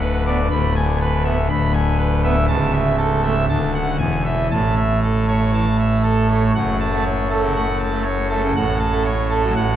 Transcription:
0.00 0.48 D1 medium
0.00 0.48 D2 medium
0.00 0.23 B4 medium
0.27 0.37 B3 medium
0.27 0.47 D5 medium
0.50 1.48 D1 medium
0.50 1.48 D2 medium
0.50 0.73 B5 medium
0.76 0.98 G#5 medium
1.01 1.23 B4 medium
1.24 1.36 B3 medium
1.24 1.47 E5 medium
1.50 2.46 D1 medium
1.50 2.46 D2 medium
1.50 1.72 B5 medium
1.74 1.96 G#5 medium
1.98 2.21 B4 medium
2.23 2.35 B3 medium
2.23 2.45 E5 medium
2.48 3.46 C#1 medium
2.48 3.46 C#2 medium
2.48 2.71 A5 loud
2.73 2.96 E5 medium
2.98 3.21 A4 medium
3.23 3.35 A3 medium
3.23 3.45 E5 medium
3.49 3.98 D1 medium
3.49 3.98 D2 medium
3.49 3.72 A5 medium
3.74 3.96 F#5 medium
3.99 4.49 E1 medium
3.99 4.49 E2 medium
3.99 4.22 G#5 medium
4.25 4.47 E5 medium
4.51 6.52 A1 medium
4.51 6.52 A2 medium
4.51 4.74 A5 medium
4.76 4.99 E5 medium
5.03 5.26 A4 medium
5.28 5.40 A3 soft
5.28 5.51 C#5 soft
5.54 5.65 E3 medium
5.54 5.77 A5 medium
5.79 6.02 E5 medium
6.03 6.27 A4 medium
6.29 6.41 A3 soft
6.29 6.51 C#5 medium
6.55 8.51 F#1 medium
6.55 8.51 F#2 medium
6.55 6.78 F#5 medium
6.80 7.03 A5 medium
6.93 7.04 A3 medium
7.05 7.28 C#5 medium
7.30 7.42 A3 medium
7.30 7.53 A4 medium
7.42 7.54 C#3 medium
7.55 7.66 A3 soft
7.55 7.78 F#5 medium
7.80 8.02 A5 medium
7.92 8.04 A3 medium
8.04 8.27 C#5 medium
8.30 8.42 A3 medium
8.30 8.52 A4 medium
8.43 8.54 C#3 medium
8.55 9.53 A1 medium
8.55 9.53 A2 medium
8.55 8.78 F#5 medium
8.80 9.02 A5 medium
8.92 9.04 A3 medium
9.05 9.27 C#5 medium
9.30 9.42 A3 medium
9.30 9.52 A4 medium
9.44 9.54 F#3 medium
9.55 9.76 A1 medium
9.55 9.76 A2 medium
9.55 9.76 F#5 medium

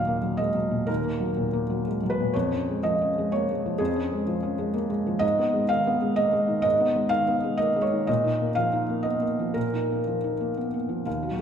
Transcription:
0.00 0.85 D#2 medium
0.00 0.17 A#2 soft
0.00 0.23 F#3 soft
0.00 0.07 A#3 soft
0.00 0.37 D#5 medium
0.00 0.39 F5 medium
0.07 0.33 A#3 soft
0.23 0.49 F#3 soft
0.37 0.56 G#3 soft
0.37 0.87 D#5 medium
0.55 0.81 F#3 soft
0.71 0.98 A#2 soft
0.87 2.30 D#2 medium
0.87 1.85 A#4 medium
1.04 1.30 A#3 soft
1.20 1.47 F#3 soft
1.37 1.63 A#2 soft
1.53 1.79 A#3 soft
1.70 1.96 F#3 soft
1.87 2.03 G#3 soft
2.03 2.28 F#3 soft
2.10 2.34 B4 medium
2.20 2.35 A#2 soft
2.34 3.76 F2 medium
2.34 2.83 C#5 medium
2.53 2.78 C#4 soft
2.69 2.94 G#3 soft
2.83 3.10 F3 soft
2.83 3.32 D#5 medium
3.01 3.26 C#4 soft
3.18 3.43 G#3 soft
3.32 3.49 A#3 soft
3.32 3.80 C#5 medium
3.51 3.75 G#3 soft
3.66 3.90 F3 soft
3.78 5.19 F2 medium
3.78 4.74 G#4 medium
3.96 4.21 C#4 soft
4.12 4.37 G#3 soft
4.27 4.53 F3 soft
4.43 4.68 C#4 soft
4.59 4.84 G#3 soft
4.74 4.90 A#3 soft
4.90 5.16 G#3 medium
5.07 5.22 F3 soft
5.19 6.60 G#2 medium
5.19 5.68 D#5 medium
5.39 5.64 B3 medium
5.54 5.79 G#3 soft
5.69 5.96 D#3 medium
5.69 6.17 F5 medium
5.87 6.12 B3 medium
6.02 6.27 G#3 soft
6.16 6.33 A#3 soft
6.16 6.61 D#5 medium
6.33 6.58 G#3 medium
6.48 6.74 D#3 medium
6.62 8.03 G#2 medium
6.62 7.11 D#5 medium
6.80 7.06 B3 medium
6.96 7.21 G#3 medium
7.09 7.37 D#3 medium
7.09 7.58 F5 loud
7.28 7.53 B3 medium
7.44 7.69 G#3 soft
7.57 7.76 A#3 soft
7.57 7.83 D#5 medium
7.76 8.02 G#3 medium
7.82 8.07 C#5 medium
7.92 8.08 D#3 medium
8.07 9.52 A#2 medium
8.07 8.56 D#5 medium
8.24 8.50 D#4 soft
8.41 8.66 A#3 soft
8.55 8.82 F3 soft
8.55 9.04 F5 medium
8.73 8.99 D#4 soft
8.89 9.15 A#3 soft
9.03 9.22 B3 soft
9.03 9.54 D#5 medium
9.22 9.49 A#3 soft
9.39 9.66 F3 soft
9.54 11.02 A#2 medium
9.54 10.55 A#4 medium
9.73 10.00 D#4 soft
9.92 10.17 A#3 soft
10.07 10.33 F3 soft
10.24 10.50 D#4 soft
10.41 10.67 A#3 soft
10.57 10.73 B3 soft
10.74 11.00 A#3 soft
10.89 11.06 F3 soft
11.06 11.42 D#2 soft
11.06 11.32 F5 soft
11.23 11.42 F#4 soft
11.31 11.42 F#3 soft

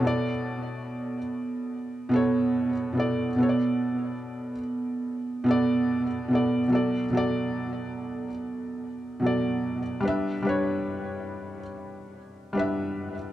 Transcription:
0.00 1.16 B2 medium
0.00 1.17 B3 medium
0.00 0.29 C#5 medium
0.00 0.28 A5 medium
0.05 1.19 A4 medium
0.05 1.20 D5 loud
2.09 2.69 B2 medium
2.09 2.71 B3 medium
2.13 2.72 A4 medium
2.13 2.73 C#5 medium
2.93 3.26 B2 medium
2.93 3.27 B3 medium
2.97 3.28 A4 medium
2.97 3.29 D5 medium
3.36 4.51 B2 medium
3.36 4.52 B3 medium
3.40 4.53 A4 medium
3.40 3.48 C#5 medium
3.49 4.57 D5 medium
5.44 6.04 B2 medium
5.44 6.05 B3 medium
5.48 6.06 A4 medium
5.48 6.07 D5 loud
6.28 6.60 B2 medium
6.28 6.61 B3 medium
6.33 6.62 A4 medium
6.33 6.63 D5 medium
6.68 7.01 B2 medium
6.68 7.02 F#3 medium
6.72 7.03 A4 medium
6.72 7.04 D5 medium
7.10 8.25 B2 medium
7.10 8.27 F#3 medium
7.15 8.28 A4 medium
7.15 8.29 D5 loud
9.20 9.79 B2 medium
9.20 9.80 F#3 medium
9.24 9.81 A4 medium
9.24 9.82 D5 medium
10.01 10.34 G3 medium
10.01 10.35 D4 medium
10.05 10.36 B4 medium
10.05 10.37 E5 loud
10.43 11.58 G3 medium
10.43 11.59 D4 medium
10.47 11.60 B4 medium
10.47 11.62 C#5 medium
12.53 13.12 G3 medium
12.53 13.13 D4 medium
12.57 13.14 B4 medium
12.57 13.15 E5 medium

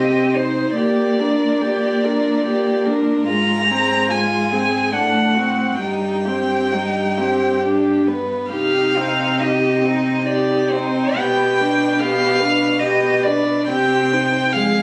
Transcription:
0.00 0.74 C3 soft
0.00 0.36 C4 soft
0.00 0.37 G4 soft
0.00 0.37 D#5 soft
0.35 0.76 D#4 soft
0.35 0.75 C5 soft
0.35 0.76 C5 soft
0.76 3.25 A#2 soft
0.76 1.21 A#3 soft
0.76 1.21 G4 soft
0.76 2.83 D5 soft
1.19 1.63 D4 soft
1.19 1.63 A#4 soft
1.61 2.06 A#3 soft
1.61 2.06 G4 soft
2.04 2.45 D4 soft
2.04 2.44 A#4 soft
2.45 2.88 A#3 soft
2.45 2.87 G4 soft
2.85 3.28 D4 soft
2.85 3.26 A#4 soft
3.27 4.96 G#2 soft
3.27 3.72 G#3 soft
3.27 3.67 F4 soft
3.27 4.12 A#5 medium
3.66 4.10 G#4 soft
3.70 4.12 C4 soft
4.08 4.54 G#3 soft
4.08 4.52 F4 soft
4.08 4.95 G#5 medium
4.50 4.94 C4 soft
4.50 4.94 G#4 soft
4.93 5.80 A2 soft
4.93 5.39 A3 soft
4.93 5.36 D4 soft
4.93 5.80 F#5 soft
5.34 5.81 C4 soft
5.34 5.79 F#4 soft
5.80 8.27 G2 soft
5.80 6.29 G3 soft
5.80 6.26 D#4 soft
5.80 7.59 G5 soft
6.25 6.76 C4 soft
6.25 6.74 G4 soft
6.73 7.20 G3 soft
6.73 7.19 D#4 soft
7.17 7.63 C4 soft
7.17 7.60 G4 soft
7.61 8.10 D4 soft
7.61 8.09 G4 soft
8.07 8.52 B3 soft
8.07 8.51 B4 soft
8.51 11.12 C3 soft
8.51 8.98 D#4 soft
8.51 8.99 G4 soft
8.51 9.41 F5 soft
8.96 9.41 C4 soft
8.96 9.44 D#4 soft
9.40 9.84 D#4 soft
9.40 9.87 G4 soft
9.40 10.27 D#5 soft
9.82 10.24 C4 soft
9.82 10.27 D#4 soft
10.25 10.73 D#4 soft
10.25 10.75 G4 soft
10.25 10.72 D5 soft
10.71 11.17 C4 soft
10.71 11.16 D#4 soft
10.71 11.18 C5 soft
11.17 13.70 B2 soft
11.17 11.62 B3 soft
11.17 11.62 G4 soft
11.17 12.01 G5 medium
11.60 12.02 D4 soft
11.60 12.01 B4 soft
12.00 12.43 B3 soft
12.00 12.41 G4 soft
12.00 12.81 F5 medium
12.40 12.82 D4 soft
12.40 12.80 B4 soft
12.79 13.27 B3 soft
12.79 13.28 G4 soft
12.79 13.24 D#5 medium
13.23 13.69 D4 soft
13.23 13.69 B4 soft
13.23 13.67 D5 medium
13.68 14.55 C3 medium
13.68 14.14 C4 soft
13.68 14.14 G4 soft
13.68 14.54 G5 medium
14.12 14.54 D#4 soft
14.12 14.53 C5 soft
14.53 14.82 F2 soft
14.53 14.82 G#3 soft
14.53 14.82 G#4 soft
14.53 14.82 F5 medium

